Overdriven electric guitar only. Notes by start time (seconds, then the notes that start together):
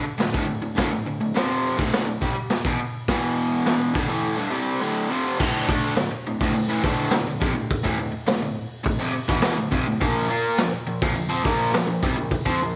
0.05 muted overdriven electric guitar stroke
0.18 D2 A2
0.33 D2 A2
0.47 D2 A2
0.62 D2 A2
0.75 D2 A2
0.91 D2 A2
1.06 D2 A2
1.20 D2 A2
1.34 F2 C3 F3
1.78 D2 A2 D3
2.08 D2 A2
2.21 C3 G3
2.36 muted overdriven electric guitar stroke
2.66 E2 B2
2.80 muted overdriven electric guitar stroke
3.09 E2 B2 E3
3.94 D2 A2
4.09 A2 E3 A3
4.37 G2 D3
4.50 C3 G3 C4
4.80 D2 A2 D3
5.09 F2 C3 F3
5.39 D2 A2 D3
5.67 D3 A3 D4
5.96 D2 A2
6.12 muted overdriven electric guitar stroke
6.27 D2 A2
6.42 D2 A2
6.55 D2 A2
6.68 A2 E3
6.84 D2 A2 D3
7.12 D2 A2
7.27 D2 A2
7.40 F2 C3
7.55 D2 A2
7.84 A2 E3
7.99 D2 A2
8.12 muted overdriven electric guitar stroke
8.27 D2 A2
8.41 D2 A2
8.84 D2 A2
8.99 F2 C3
9.15 muted overdriven electric guitar stroke
9.28 E2 B2 E3
9.57 D2 A2
9.71 F2 C3
9.87 D2 A2
10.00 A#2 F3 A#3
10.30 A#3 F4 A#4
10.59 A#2 F3
10.74 muted overdriven electric guitar stroke
10.87 A#2 F3
11.03 A#2 F3
11.16 A#2 F3
11.29 F3 C4
11.43 A#2 F3 A#3
11.72 A#2 F3
11.86 A#2 F3
12.03 C3 G3
12.18 A#2 F3
12.46 F3 C4
12.62 A#2 F3